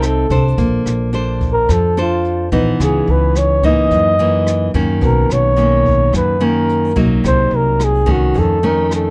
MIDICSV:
0, 0, Header, 1, 5, 480
1, 0, Start_track
1, 0, Key_signature, -5, "minor"
1, 0, Tempo, 555556
1, 499, Time_signature, 4, 2, 24, 8
1, 7865, End_track
2, 0, Start_track
2, 0, Title_t, "Flugelhorn"
2, 0, Program_c, 0, 56
2, 52, Note_on_c, 0, 69, 71
2, 395, Note_off_c, 0, 69, 0
2, 1323, Note_on_c, 0, 70, 87
2, 1489, Note_on_c, 0, 69, 82
2, 1502, Note_off_c, 0, 70, 0
2, 1713, Note_off_c, 0, 69, 0
2, 1735, Note_on_c, 0, 65, 68
2, 2164, Note_off_c, 0, 65, 0
2, 2449, Note_on_c, 0, 68, 75
2, 2687, Note_on_c, 0, 71, 72
2, 2700, Note_off_c, 0, 68, 0
2, 2917, Note_on_c, 0, 73, 73
2, 2930, Note_off_c, 0, 71, 0
2, 3147, Note_off_c, 0, 73, 0
2, 3164, Note_on_c, 0, 75, 92
2, 4076, Note_off_c, 0, 75, 0
2, 4360, Note_on_c, 0, 70, 78
2, 4602, Note_on_c, 0, 73, 91
2, 4615, Note_off_c, 0, 70, 0
2, 5309, Note_off_c, 0, 73, 0
2, 5326, Note_on_c, 0, 71, 78
2, 5568, Note_on_c, 0, 70, 68
2, 5580, Note_off_c, 0, 71, 0
2, 6032, Note_off_c, 0, 70, 0
2, 6284, Note_on_c, 0, 72, 91
2, 6533, Note_on_c, 0, 70, 79
2, 6546, Note_off_c, 0, 72, 0
2, 6776, Note_on_c, 0, 68, 79
2, 6789, Note_off_c, 0, 70, 0
2, 7014, Note_on_c, 0, 66, 73
2, 7027, Note_off_c, 0, 68, 0
2, 7248, Note_on_c, 0, 69, 77
2, 7261, Note_off_c, 0, 66, 0
2, 7486, Note_on_c, 0, 70, 76
2, 7499, Note_off_c, 0, 69, 0
2, 7712, Note_off_c, 0, 70, 0
2, 7734, Note_on_c, 0, 69, 65
2, 7865, Note_off_c, 0, 69, 0
2, 7865, End_track
3, 0, Start_track
3, 0, Title_t, "Nylon-string guitar"
3, 0, Program_c, 1, 24
3, 0, Note_on_c, 1, 48, 49
3, 0, Note_on_c, 1, 60, 53
3, 0, Note_on_c, 1, 63, 57
3, 0, Note_on_c, 1, 69, 61
3, 221, Note_off_c, 1, 60, 0
3, 222, Note_off_c, 1, 63, 0
3, 226, Note_off_c, 1, 69, 0
3, 262, Note_on_c, 1, 62, 49
3, 266, Note_on_c, 1, 69, 55
3, 272, Note_on_c, 1, 72, 60
3, 477, Note_off_c, 1, 48, 0
3, 501, Note_on_c, 1, 58, 50
3, 942, Note_off_c, 1, 62, 0
3, 942, Note_off_c, 1, 69, 0
3, 946, Note_off_c, 1, 72, 0
3, 975, Note_on_c, 1, 62, 50
3, 982, Note_on_c, 1, 69, 46
3, 989, Note_on_c, 1, 72, 53
3, 1435, Note_off_c, 1, 58, 0
3, 1462, Note_on_c, 1, 53, 49
3, 1658, Note_off_c, 1, 62, 0
3, 1662, Note_off_c, 1, 69, 0
3, 1663, Note_off_c, 1, 72, 0
3, 1704, Note_on_c, 1, 62, 52
3, 1708, Note_on_c, 1, 69, 51
3, 1715, Note_on_c, 1, 72, 60
3, 2142, Note_off_c, 1, 62, 0
3, 2144, Note_off_c, 1, 69, 0
3, 2147, Note_off_c, 1, 72, 0
3, 2178, Note_on_c, 1, 52, 57
3, 2182, Note_on_c, 1, 59, 58
3, 2183, Note_on_c, 1, 63, 54
3, 2395, Note_off_c, 1, 53, 0
3, 2419, Note_on_c, 1, 49, 49
3, 3099, Note_off_c, 1, 52, 0
3, 3100, Note_off_c, 1, 59, 0
3, 3101, Note_off_c, 1, 63, 0
3, 3140, Note_on_c, 1, 52, 52
3, 3146, Note_on_c, 1, 63, 61
3, 3147, Note_on_c, 1, 58, 48
3, 3354, Note_off_c, 1, 49, 0
3, 3383, Note_on_c, 1, 42, 47
3, 3580, Note_off_c, 1, 52, 0
3, 3582, Note_off_c, 1, 58, 0
3, 3583, Note_off_c, 1, 63, 0
3, 3621, Note_on_c, 1, 52, 51
3, 3629, Note_on_c, 1, 58, 54
3, 3630, Note_on_c, 1, 63, 55
3, 4060, Note_off_c, 1, 52, 0
3, 4064, Note_off_c, 1, 58, 0
3, 4065, Note_off_c, 1, 63, 0
3, 4097, Note_on_c, 1, 51, 53
3, 4103, Note_on_c, 1, 58, 54
3, 4105, Note_on_c, 1, 61, 59
3, 4315, Note_off_c, 1, 42, 0
3, 4331, Note_on_c, 1, 47, 49
3, 4779, Note_off_c, 1, 51, 0
3, 4780, Note_off_c, 1, 58, 0
3, 4782, Note_off_c, 1, 61, 0
3, 4808, Note_on_c, 1, 51, 45
3, 4815, Note_on_c, 1, 58, 46
3, 4821, Note_on_c, 1, 61, 47
3, 5270, Note_off_c, 1, 47, 0
3, 5294, Note_on_c, 1, 42, 47
3, 5494, Note_off_c, 1, 51, 0
3, 5496, Note_off_c, 1, 58, 0
3, 5500, Note_off_c, 1, 61, 0
3, 5534, Note_on_c, 1, 51, 57
3, 5538, Note_on_c, 1, 58, 57
3, 5539, Note_on_c, 1, 61, 61
3, 5977, Note_off_c, 1, 51, 0
3, 5979, Note_off_c, 1, 58, 0
3, 5980, Note_off_c, 1, 61, 0
3, 6012, Note_on_c, 1, 54, 55
3, 6015, Note_on_c, 1, 58, 57
3, 6019, Note_on_c, 1, 63, 59
3, 6232, Note_off_c, 1, 42, 0
3, 6253, Note_on_c, 1, 48, 49
3, 6936, Note_off_c, 1, 54, 0
3, 6938, Note_off_c, 1, 58, 0
3, 6939, Note_off_c, 1, 63, 0
3, 6964, Note_on_c, 1, 51, 53
3, 6970, Note_on_c, 1, 57, 52
3, 6973, Note_on_c, 1, 61, 59
3, 7192, Note_off_c, 1, 48, 0
3, 7208, Note_on_c, 1, 41, 49
3, 7413, Note_off_c, 1, 51, 0
3, 7416, Note_off_c, 1, 57, 0
3, 7416, Note_off_c, 1, 61, 0
3, 7457, Note_on_c, 1, 51, 59
3, 7463, Note_on_c, 1, 57, 57
3, 7464, Note_on_c, 1, 61, 56
3, 7865, Note_off_c, 1, 41, 0
3, 7865, Note_off_c, 1, 51, 0
3, 7865, Note_off_c, 1, 57, 0
3, 7865, Note_off_c, 1, 61, 0
3, 7865, End_track
4, 0, Start_track
4, 0, Title_t, "Upright bass"
4, 0, Program_c, 2, 32
4, 0, Note_on_c, 2, 36, 66
4, 225, Note_off_c, 2, 36, 0
4, 260, Note_on_c, 2, 36, 74
4, 483, Note_off_c, 2, 36, 0
4, 497, Note_on_c, 2, 34, 75
4, 721, Note_off_c, 2, 34, 0
4, 742, Note_on_c, 2, 34, 75
4, 1425, Note_off_c, 2, 34, 0
4, 1458, Note_on_c, 2, 41, 71
4, 2142, Note_off_c, 2, 41, 0
4, 2176, Note_on_c, 2, 34, 74
4, 2399, Note_off_c, 2, 34, 0
4, 2421, Note_on_c, 2, 37, 80
4, 2642, Note_off_c, 2, 37, 0
4, 2656, Note_on_c, 2, 37, 74
4, 3342, Note_off_c, 2, 37, 0
4, 3377, Note_on_c, 2, 42, 68
4, 4062, Note_off_c, 2, 42, 0
4, 4096, Note_on_c, 2, 42, 76
4, 4319, Note_off_c, 2, 42, 0
4, 4336, Note_on_c, 2, 35, 78
4, 4559, Note_off_c, 2, 35, 0
4, 4575, Note_on_c, 2, 35, 70
4, 5261, Note_off_c, 2, 35, 0
4, 5299, Note_on_c, 2, 42, 70
4, 5984, Note_off_c, 2, 42, 0
4, 6019, Note_on_c, 2, 35, 79
4, 6241, Note_off_c, 2, 35, 0
4, 6259, Note_on_c, 2, 36, 75
4, 6481, Note_off_c, 2, 36, 0
4, 6487, Note_on_c, 2, 36, 71
4, 7178, Note_off_c, 2, 36, 0
4, 7221, Note_on_c, 2, 41, 73
4, 7865, Note_off_c, 2, 41, 0
4, 7865, End_track
5, 0, Start_track
5, 0, Title_t, "Drums"
5, 19, Note_on_c, 9, 37, 52
5, 19, Note_on_c, 9, 42, 37
5, 105, Note_off_c, 9, 37, 0
5, 105, Note_off_c, 9, 42, 0
5, 257, Note_on_c, 9, 42, 23
5, 259, Note_on_c, 9, 36, 45
5, 343, Note_off_c, 9, 42, 0
5, 345, Note_off_c, 9, 36, 0
5, 498, Note_on_c, 9, 36, 49
5, 498, Note_on_c, 9, 42, 39
5, 584, Note_off_c, 9, 36, 0
5, 585, Note_off_c, 9, 42, 0
5, 740, Note_on_c, 9, 37, 49
5, 740, Note_on_c, 9, 42, 24
5, 827, Note_off_c, 9, 37, 0
5, 827, Note_off_c, 9, 42, 0
5, 978, Note_on_c, 9, 42, 40
5, 1065, Note_off_c, 9, 42, 0
5, 1217, Note_on_c, 9, 36, 48
5, 1217, Note_on_c, 9, 42, 23
5, 1304, Note_off_c, 9, 36, 0
5, 1304, Note_off_c, 9, 42, 0
5, 1458, Note_on_c, 9, 36, 47
5, 1459, Note_on_c, 9, 37, 50
5, 1459, Note_on_c, 9, 42, 35
5, 1544, Note_off_c, 9, 36, 0
5, 1546, Note_off_c, 9, 37, 0
5, 1546, Note_off_c, 9, 42, 0
5, 1699, Note_on_c, 9, 42, 23
5, 1786, Note_off_c, 9, 42, 0
5, 1939, Note_on_c, 9, 42, 35
5, 2026, Note_off_c, 9, 42, 0
5, 2178, Note_on_c, 9, 36, 47
5, 2178, Note_on_c, 9, 42, 22
5, 2264, Note_off_c, 9, 36, 0
5, 2265, Note_off_c, 9, 42, 0
5, 2418, Note_on_c, 9, 36, 48
5, 2419, Note_on_c, 9, 37, 47
5, 2419, Note_on_c, 9, 42, 36
5, 2504, Note_off_c, 9, 36, 0
5, 2506, Note_off_c, 9, 37, 0
5, 2506, Note_off_c, 9, 42, 0
5, 2660, Note_on_c, 9, 42, 23
5, 2746, Note_off_c, 9, 42, 0
5, 2895, Note_on_c, 9, 37, 51
5, 2895, Note_on_c, 9, 42, 39
5, 2982, Note_off_c, 9, 37, 0
5, 2982, Note_off_c, 9, 42, 0
5, 3137, Note_on_c, 9, 36, 47
5, 3139, Note_on_c, 9, 42, 22
5, 3223, Note_off_c, 9, 36, 0
5, 3225, Note_off_c, 9, 42, 0
5, 3376, Note_on_c, 9, 36, 46
5, 3377, Note_on_c, 9, 42, 36
5, 3462, Note_off_c, 9, 36, 0
5, 3464, Note_off_c, 9, 42, 0
5, 3618, Note_on_c, 9, 42, 24
5, 3705, Note_off_c, 9, 42, 0
5, 3857, Note_on_c, 9, 37, 51
5, 3857, Note_on_c, 9, 42, 38
5, 3944, Note_off_c, 9, 37, 0
5, 3944, Note_off_c, 9, 42, 0
5, 4096, Note_on_c, 9, 36, 44
5, 4096, Note_on_c, 9, 42, 23
5, 4182, Note_off_c, 9, 42, 0
5, 4183, Note_off_c, 9, 36, 0
5, 4336, Note_on_c, 9, 36, 49
5, 4338, Note_on_c, 9, 42, 35
5, 4422, Note_off_c, 9, 36, 0
5, 4424, Note_off_c, 9, 42, 0
5, 4578, Note_on_c, 9, 37, 51
5, 4578, Note_on_c, 9, 42, 25
5, 4664, Note_off_c, 9, 37, 0
5, 4664, Note_off_c, 9, 42, 0
5, 4821, Note_on_c, 9, 42, 40
5, 4907, Note_off_c, 9, 42, 0
5, 5057, Note_on_c, 9, 36, 44
5, 5059, Note_on_c, 9, 42, 23
5, 5143, Note_off_c, 9, 36, 0
5, 5146, Note_off_c, 9, 42, 0
5, 5297, Note_on_c, 9, 36, 47
5, 5299, Note_on_c, 9, 37, 51
5, 5299, Note_on_c, 9, 42, 32
5, 5383, Note_off_c, 9, 36, 0
5, 5385, Note_off_c, 9, 37, 0
5, 5385, Note_off_c, 9, 42, 0
5, 5778, Note_on_c, 9, 42, 36
5, 5865, Note_off_c, 9, 42, 0
5, 6017, Note_on_c, 9, 36, 48
5, 6017, Note_on_c, 9, 42, 23
5, 6103, Note_off_c, 9, 36, 0
5, 6104, Note_off_c, 9, 42, 0
5, 6258, Note_on_c, 9, 36, 52
5, 6258, Note_on_c, 9, 37, 50
5, 6258, Note_on_c, 9, 42, 35
5, 6344, Note_off_c, 9, 36, 0
5, 6344, Note_off_c, 9, 37, 0
5, 6344, Note_off_c, 9, 42, 0
5, 6496, Note_on_c, 9, 42, 22
5, 6582, Note_off_c, 9, 42, 0
5, 6735, Note_on_c, 9, 37, 53
5, 6735, Note_on_c, 9, 42, 39
5, 6822, Note_off_c, 9, 37, 0
5, 6822, Note_off_c, 9, 42, 0
5, 6977, Note_on_c, 9, 36, 47
5, 6977, Note_on_c, 9, 42, 23
5, 7063, Note_off_c, 9, 36, 0
5, 7063, Note_off_c, 9, 42, 0
5, 7215, Note_on_c, 9, 42, 37
5, 7217, Note_on_c, 9, 36, 49
5, 7302, Note_off_c, 9, 42, 0
5, 7304, Note_off_c, 9, 36, 0
5, 7457, Note_on_c, 9, 42, 23
5, 7543, Note_off_c, 9, 42, 0
5, 7697, Note_on_c, 9, 37, 50
5, 7697, Note_on_c, 9, 42, 36
5, 7783, Note_off_c, 9, 37, 0
5, 7783, Note_off_c, 9, 42, 0
5, 7865, End_track
0, 0, End_of_file